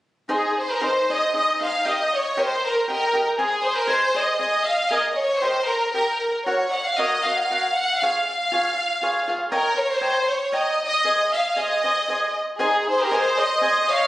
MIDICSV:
0, 0, Header, 1, 4, 480
1, 0, Start_track
1, 0, Key_signature, -4, "major"
1, 0, Tempo, 515021
1, 267, Time_signature, 3, 2, 24, 8
1, 7468, Tempo, 507614
1, 13198, End_track
2, 0, Start_track
2, 0, Title_t, "Cavaquinho"
2, 0, Program_c, 0, 24
2, 269, Note_on_c, 0, 63, 55
2, 272, Note_on_c, 0, 72, 54
2, 274, Note_on_c, 0, 68, 50
2, 279, Note_on_c, 0, 75, 64
2, 418, Note_off_c, 0, 63, 0
2, 419, Note_off_c, 0, 72, 0
2, 420, Note_off_c, 0, 68, 0
2, 423, Note_off_c, 0, 75, 0
2, 757, Note_on_c, 0, 68, 49
2, 759, Note_on_c, 0, 63, 51
2, 762, Note_on_c, 0, 72, 49
2, 773, Note_on_c, 0, 75, 48
2, 905, Note_off_c, 0, 68, 0
2, 906, Note_off_c, 0, 63, 0
2, 907, Note_off_c, 0, 72, 0
2, 913, Note_off_c, 0, 75, 0
2, 1020, Note_on_c, 0, 63, 43
2, 1024, Note_on_c, 0, 68, 46
2, 1032, Note_on_c, 0, 72, 44
2, 1032, Note_on_c, 0, 75, 49
2, 1151, Note_off_c, 0, 63, 0
2, 1153, Note_off_c, 0, 68, 0
2, 1158, Note_off_c, 0, 72, 0
2, 1158, Note_off_c, 0, 75, 0
2, 1246, Note_on_c, 0, 63, 52
2, 1253, Note_on_c, 0, 68, 48
2, 1259, Note_on_c, 0, 72, 47
2, 1263, Note_on_c, 0, 75, 57
2, 1391, Note_off_c, 0, 63, 0
2, 1395, Note_off_c, 0, 68, 0
2, 1398, Note_off_c, 0, 72, 0
2, 1399, Note_off_c, 0, 75, 0
2, 1497, Note_on_c, 0, 63, 45
2, 1505, Note_on_c, 0, 68, 43
2, 1505, Note_on_c, 0, 72, 48
2, 1514, Note_on_c, 0, 75, 42
2, 1631, Note_off_c, 0, 63, 0
2, 1636, Note_off_c, 0, 68, 0
2, 1636, Note_off_c, 0, 72, 0
2, 1640, Note_off_c, 0, 75, 0
2, 1727, Note_on_c, 0, 67, 51
2, 1730, Note_on_c, 0, 75, 56
2, 1731, Note_on_c, 0, 79, 72
2, 1732, Note_on_c, 0, 70, 61
2, 1873, Note_off_c, 0, 67, 0
2, 1874, Note_off_c, 0, 75, 0
2, 1875, Note_off_c, 0, 70, 0
2, 1875, Note_off_c, 0, 79, 0
2, 2209, Note_on_c, 0, 67, 52
2, 2215, Note_on_c, 0, 75, 54
2, 2216, Note_on_c, 0, 70, 55
2, 2223, Note_on_c, 0, 79, 50
2, 2352, Note_off_c, 0, 67, 0
2, 2355, Note_off_c, 0, 70, 0
2, 2355, Note_off_c, 0, 75, 0
2, 2359, Note_off_c, 0, 79, 0
2, 2684, Note_on_c, 0, 67, 46
2, 2697, Note_on_c, 0, 70, 51
2, 2698, Note_on_c, 0, 75, 52
2, 2701, Note_on_c, 0, 79, 61
2, 2826, Note_off_c, 0, 67, 0
2, 2832, Note_off_c, 0, 70, 0
2, 2833, Note_off_c, 0, 75, 0
2, 2834, Note_off_c, 0, 79, 0
2, 2920, Note_on_c, 0, 67, 43
2, 2929, Note_on_c, 0, 75, 48
2, 2931, Note_on_c, 0, 70, 45
2, 2937, Note_on_c, 0, 79, 49
2, 3055, Note_off_c, 0, 67, 0
2, 3059, Note_off_c, 0, 75, 0
2, 3060, Note_off_c, 0, 70, 0
2, 3064, Note_off_c, 0, 79, 0
2, 3155, Note_on_c, 0, 68, 58
2, 3159, Note_on_c, 0, 72, 60
2, 3165, Note_on_c, 0, 75, 56
2, 3165, Note_on_c, 0, 80, 66
2, 3295, Note_off_c, 0, 68, 0
2, 3297, Note_off_c, 0, 72, 0
2, 3300, Note_off_c, 0, 75, 0
2, 3300, Note_off_c, 0, 80, 0
2, 3609, Note_on_c, 0, 68, 56
2, 3612, Note_on_c, 0, 72, 58
2, 3621, Note_on_c, 0, 75, 59
2, 3626, Note_on_c, 0, 80, 60
2, 3761, Note_off_c, 0, 68, 0
2, 3763, Note_off_c, 0, 72, 0
2, 3768, Note_off_c, 0, 75, 0
2, 3770, Note_off_c, 0, 80, 0
2, 3863, Note_on_c, 0, 68, 46
2, 3868, Note_on_c, 0, 72, 42
2, 3879, Note_on_c, 0, 75, 50
2, 3883, Note_on_c, 0, 80, 57
2, 4001, Note_off_c, 0, 68, 0
2, 4004, Note_off_c, 0, 72, 0
2, 4010, Note_off_c, 0, 75, 0
2, 4012, Note_off_c, 0, 80, 0
2, 4094, Note_on_c, 0, 68, 45
2, 4098, Note_on_c, 0, 72, 46
2, 4109, Note_on_c, 0, 75, 53
2, 4110, Note_on_c, 0, 80, 51
2, 4242, Note_off_c, 0, 68, 0
2, 4244, Note_off_c, 0, 72, 0
2, 4249, Note_off_c, 0, 75, 0
2, 4250, Note_off_c, 0, 80, 0
2, 4572, Note_on_c, 0, 68, 50
2, 4576, Note_on_c, 0, 70, 59
2, 4580, Note_on_c, 0, 75, 56
2, 4584, Note_on_c, 0, 80, 57
2, 4722, Note_off_c, 0, 68, 0
2, 4724, Note_off_c, 0, 70, 0
2, 4726, Note_off_c, 0, 75, 0
2, 4728, Note_off_c, 0, 80, 0
2, 5050, Note_on_c, 0, 67, 51
2, 5065, Note_on_c, 0, 70, 47
2, 5066, Note_on_c, 0, 75, 57
2, 5068, Note_on_c, 0, 79, 47
2, 5201, Note_off_c, 0, 67, 0
2, 5208, Note_off_c, 0, 70, 0
2, 5209, Note_off_c, 0, 75, 0
2, 5210, Note_off_c, 0, 79, 0
2, 5537, Note_on_c, 0, 67, 41
2, 5540, Note_on_c, 0, 70, 48
2, 5548, Note_on_c, 0, 75, 43
2, 5554, Note_on_c, 0, 79, 46
2, 5691, Note_off_c, 0, 67, 0
2, 5692, Note_off_c, 0, 70, 0
2, 5696, Note_off_c, 0, 75, 0
2, 5700, Note_off_c, 0, 79, 0
2, 6023, Note_on_c, 0, 66, 52
2, 6026, Note_on_c, 0, 70, 49
2, 6029, Note_on_c, 0, 73, 53
2, 6033, Note_on_c, 0, 78, 56
2, 6176, Note_off_c, 0, 66, 0
2, 6177, Note_off_c, 0, 70, 0
2, 6178, Note_off_c, 0, 73, 0
2, 6180, Note_off_c, 0, 78, 0
2, 6506, Note_on_c, 0, 66, 48
2, 6512, Note_on_c, 0, 70, 50
2, 6516, Note_on_c, 0, 73, 51
2, 6519, Note_on_c, 0, 78, 54
2, 6658, Note_off_c, 0, 66, 0
2, 6661, Note_off_c, 0, 70, 0
2, 6663, Note_off_c, 0, 73, 0
2, 6665, Note_off_c, 0, 78, 0
2, 6753, Note_on_c, 0, 66, 40
2, 6765, Note_on_c, 0, 73, 43
2, 6768, Note_on_c, 0, 70, 45
2, 6774, Note_on_c, 0, 78, 47
2, 6896, Note_off_c, 0, 66, 0
2, 6901, Note_off_c, 0, 73, 0
2, 6903, Note_off_c, 0, 70, 0
2, 6906, Note_off_c, 0, 78, 0
2, 6993, Note_on_c, 0, 70, 46
2, 6995, Note_on_c, 0, 66, 47
2, 7000, Note_on_c, 0, 73, 50
2, 7003, Note_on_c, 0, 78, 49
2, 7140, Note_off_c, 0, 70, 0
2, 7141, Note_off_c, 0, 66, 0
2, 7144, Note_off_c, 0, 73, 0
2, 7145, Note_off_c, 0, 78, 0
2, 7474, Note_on_c, 0, 65, 50
2, 7481, Note_on_c, 0, 68, 54
2, 7483, Note_on_c, 0, 73, 53
2, 7487, Note_on_c, 0, 77, 69
2, 7622, Note_off_c, 0, 65, 0
2, 7626, Note_off_c, 0, 68, 0
2, 7627, Note_off_c, 0, 73, 0
2, 7629, Note_off_c, 0, 77, 0
2, 7945, Note_on_c, 0, 65, 55
2, 7950, Note_on_c, 0, 68, 55
2, 7956, Note_on_c, 0, 73, 58
2, 7964, Note_on_c, 0, 77, 51
2, 8097, Note_off_c, 0, 65, 0
2, 8100, Note_off_c, 0, 68, 0
2, 8103, Note_off_c, 0, 73, 0
2, 8107, Note_off_c, 0, 77, 0
2, 8417, Note_on_c, 0, 65, 50
2, 8428, Note_on_c, 0, 68, 62
2, 8431, Note_on_c, 0, 73, 59
2, 8433, Note_on_c, 0, 77, 62
2, 8569, Note_off_c, 0, 65, 0
2, 8574, Note_off_c, 0, 68, 0
2, 8576, Note_off_c, 0, 73, 0
2, 8577, Note_off_c, 0, 77, 0
2, 8663, Note_on_c, 0, 65, 53
2, 8665, Note_on_c, 0, 68, 47
2, 8676, Note_on_c, 0, 73, 49
2, 8679, Note_on_c, 0, 77, 57
2, 8804, Note_off_c, 0, 65, 0
2, 8805, Note_off_c, 0, 68, 0
2, 8810, Note_off_c, 0, 73, 0
2, 8812, Note_off_c, 0, 77, 0
2, 8892, Note_on_c, 0, 73, 63
2, 8892, Note_on_c, 0, 75, 62
2, 8893, Note_on_c, 0, 79, 62
2, 8900, Note_on_c, 0, 82, 63
2, 9042, Note_off_c, 0, 73, 0
2, 9042, Note_off_c, 0, 75, 0
2, 9043, Note_off_c, 0, 79, 0
2, 9046, Note_off_c, 0, 82, 0
2, 9357, Note_on_c, 0, 73, 47
2, 9361, Note_on_c, 0, 75, 55
2, 9367, Note_on_c, 0, 79, 54
2, 9373, Note_on_c, 0, 82, 56
2, 9514, Note_off_c, 0, 73, 0
2, 9516, Note_off_c, 0, 75, 0
2, 9519, Note_off_c, 0, 79, 0
2, 9522, Note_off_c, 0, 82, 0
2, 9840, Note_on_c, 0, 73, 52
2, 9845, Note_on_c, 0, 75, 55
2, 9853, Note_on_c, 0, 79, 59
2, 9858, Note_on_c, 0, 82, 53
2, 9997, Note_off_c, 0, 73, 0
2, 9999, Note_off_c, 0, 75, 0
2, 10003, Note_off_c, 0, 79, 0
2, 10005, Note_off_c, 0, 82, 0
2, 10335, Note_on_c, 0, 68, 49
2, 10337, Note_on_c, 0, 72, 55
2, 10339, Note_on_c, 0, 75, 48
2, 10343, Note_on_c, 0, 80, 55
2, 10486, Note_off_c, 0, 68, 0
2, 10487, Note_off_c, 0, 72, 0
2, 10487, Note_off_c, 0, 75, 0
2, 10490, Note_off_c, 0, 80, 0
2, 10824, Note_on_c, 0, 68, 49
2, 10832, Note_on_c, 0, 72, 57
2, 10839, Note_on_c, 0, 75, 51
2, 10844, Note_on_c, 0, 80, 56
2, 10973, Note_off_c, 0, 68, 0
2, 10976, Note_off_c, 0, 72, 0
2, 10980, Note_off_c, 0, 75, 0
2, 10983, Note_off_c, 0, 80, 0
2, 11078, Note_on_c, 0, 68, 32
2, 11085, Note_on_c, 0, 72, 37
2, 11092, Note_on_c, 0, 75, 40
2, 11098, Note_on_c, 0, 80, 52
2, 11216, Note_off_c, 0, 68, 0
2, 11219, Note_off_c, 0, 72, 0
2, 11222, Note_off_c, 0, 75, 0
2, 11226, Note_off_c, 0, 80, 0
2, 11317, Note_on_c, 0, 68, 44
2, 11323, Note_on_c, 0, 72, 40
2, 11328, Note_on_c, 0, 75, 46
2, 11335, Note_on_c, 0, 80, 51
2, 11463, Note_off_c, 0, 68, 0
2, 11466, Note_off_c, 0, 72, 0
2, 11468, Note_off_c, 0, 75, 0
2, 11472, Note_off_c, 0, 80, 0
2, 11797, Note_on_c, 0, 68, 53
2, 11802, Note_on_c, 0, 72, 60
2, 11805, Note_on_c, 0, 75, 62
2, 11808, Note_on_c, 0, 80, 68
2, 11945, Note_off_c, 0, 68, 0
2, 11947, Note_off_c, 0, 72, 0
2, 11948, Note_off_c, 0, 75, 0
2, 11950, Note_off_c, 0, 80, 0
2, 12285, Note_on_c, 0, 68, 59
2, 12292, Note_on_c, 0, 75, 70
2, 12295, Note_on_c, 0, 72, 49
2, 12304, Note_on_c, 0, 80, 66
2, 12432, Note_off_c, 0, 68, 0
2, 12435, Note_off_c, 0, 75, 0
2, 12437, Note_off_c, 0, 72, 0
2, 12441, Note_off_c, 0, 80, 0
2, 12765, Note_on_c, 0, 68, 54
2, 12769, Note_on_c, 0, 72, 57
2, 12769, Note_on_c, 0, 75, 56
2, 12776, Note_on_c, 0, 80, 67
2, 12908, Note_off_c, 0, 68, 0
2, 12910, Note_off_c, 0, 72, 0
2, 12910, Note_off_c, 0, 75, 0
2, 12914, Note_off_c, 0, 80, 0
2, 13198, End_track
3, 0, Start_track
3, 0, Title_t, "Violin section"
3, 0, Program_c, 1, 48
3, 299, Note_on_c, 1, 68, 51
3, 516, Note_off_c, 1, 68, 0
3, 552, Note_on_c, 1, 72, 56
3, 651, Note_off_c, 1, 72, 0
3, 667, Note_on_c, 1, 70, 53
3, 768, Note_off_c, 1, 70, 0
3, 781, Note_on_c, 1, 72, 67
3, 1017, Note_off_c, 1, 72, 0
3, 1040, Note_on_c, 1, 75, 72
3, 1251, Note_off_c, 1, 75, 0
3, 1263, Note_on_c, 1, 75, 71
3, 1483, Note_off_c, 1, 75, 0
3, 1517, Note_on_c, 1, 77, 70
3, 1735, Note_off_c, 1, 77, 0
3, 1751, Note_on_c, 1, 75, 67
3, 1984, Note_off_c, 1, 75, 0
3, 2005, Note_on_c, 1, 73, 68
3, 2217, Note_off_c, 1, 73, 0
3, 2245, Note_on_c, 1, 72, 77
3, 2468, Note_off_c, 1, 72, 0
3, 2483, Note_on_c, 1, 70, 62
3, 2693, Note_off_c, 1, 70, 0
3, 2712, Note_on_c, 1, 70, 72
3, 3026, Note_off_c, 1, 70, 0
3, 3159, Note_on_c, 1, 68, 67
3, 3378, Note_off_c, 1, 68, 0
3, 3394, Note_on_c, 1, 72, 71
3, 3505, Note_off_c, 1, 72, 0
3, 3512, Note_on_c, 1, 70, 73
3, 3621, Note_on_c, 1, 72, 93
3, 3622, Note_off_c, 1, 70, 0
3, 3866, Note_off_c, 1, 72, 0
3, 3885, Note_on_c, 1, 75, 79
3, 4085, Note_off_c, 1, 75, 0
3, 4096, Note_on_c, 1, 75, 70
3, 4324, Note_off_c, 1, 75, 0
3, 4347, Note_on_c, 1, 77, 72
3, 4575, Note_on_c, 1, 75, 67
3, 4576, Note_off_c, 1, 77, 0
3, 4740, Note_off_c, 1, 75, 0
3, 4751, Note_on_c, 1, 75, 51
3, 4809, Note_on_c, 1, 73, 72
3, 4818, Note_off_c, 1, 75, 0
3, 5018, Note_on_c, 1, 72, 75
3, 5047, Note_off_c, 1, 73, 0
3, 5284, Note_on_c, 1, 70, 63
3, 5285, Note_off_c, 1, 72, 0
3, 5509, Note_off_c, 1, 70, 0
3, 5520, Note_on_c, 1, 70, 67
3, 5875, Note_off_c, 1, 70, 0
3, 6017, Note_on_c, 1, 73, 74
3, 6255, Note_off_c, 1, 73, 0
3, 6270, Note_on_c, 1, 78, 66
3, 6383, Note_on_c, 1, 77, 75
3, 6391, Note_off_c, 1, 78, 0
3, 6505, Note_off_c, 1, 77, 0
3, 6510, Note_on_c, 1, 75, 87
3, 6731, Note_on_c, 1, 77, 74
3, 6760, Note_off_c, 1, 75, 0
3, 7223, Note_off_c, 1, 77, 0
3, 7232, Note_on_c, 1, 78, 76
3, 7441, Note_on_c, 1, 77, 71
3, 7466, Note_off_c, 1, 78, 0
3, 7687, Note_off_c, 1, 77, 0
3, 7714, Note_on_c, 1, 77, 75
3, 8631, Note_off_c, 1, 77, 0
3, 8896, Note_on_c, 1, 70, 66
3, 9125, Note_off_c, 1, 70, 0
3, 9143, Note_on_c, 1, 73, 70
3, 9259, Note_off_c, 1, 73, 0
3, 9266, Note_on_c, 1, 72, 78
3, 9626, Note_off_c, 1, 72, 0
3, 9627, Note_on_c, 1, 73, 67
3, 9857, Note_off_c, 1, 73, 0
3, 9870, Note_on_c, 1, 75, 65
3, 10111, Note_off_c, 1, 75, 0
3, 10131, Note_on_c, 1, 75, 87
3, 10567, Note_off_c, 1, 75, 0
3, 10607, Note_on_c, 1, 77, 71
3, 10830, Note_off_c, 1, 77, 0
3, 10841, Note_on_c, 1, 75, 69
3, 11568, Note_off_c, 1, 75, 0
3, 11824, Note_on_c, 1, 68, 61
3, 12042, Note_off_c, 1, 68, 0
3, 12088, Note_on_c, 1, 72, 66
3, 12182, Note_off_c, 1, 72, 0
3, 12194, Note_on_c, 1, 70, 67
3, 12294, Note_off_c, 1, 70, 0
3, 12325, Note_on_c, 1, 72, 81
3, 12551, Note_off_c, 1, 72, 0
3, 12551, Note_on_c, 1, 75, 84
3, 12770, Note_off_c, 1, 75, 0
3, 12784, Note_on_c, 1, 75, 74
3, 12999, Note_off_c, 1, 75, 0
3, 13029, Note_on_c, 1, 77, 83
3, 13198, Note_off_c, 1, 77, 0
3, 13198, End_track
4, 0, Start_track
4, 0, Title_t, "Trumpet"
4, 0, Program_c, 2, 56
4, 11817, Note_on_c, 2, 63, 57
4, 12074, Note_on_c, 2, 68, 66
4, 12089, Note_off_c, 2, 63, 0
4, 12202, Note_on_c, 2, 67, 61
4, 12216, Note_off_c, 2, 68, 0
4, 12305, Note_on_c, 2, 68, 57
4, 12320, Note_off_c, 2, 67, 0
4, 12544, Note_on_c, 2, 72, 66
4, 12559, Note_off_c, 2, 68, 0
4, 12760, Note_off_c, 2, 72, 0
4, 12766, Note_on_c, 2, 72, 59
4, 13021, Note_on_c, 2, 73, 68
4, 13035, Note_off_c, 2, 72, 0
4, 13198, Note_off_c, 2, 73, 0
4, 13198, End_track
0, 0, End_of_file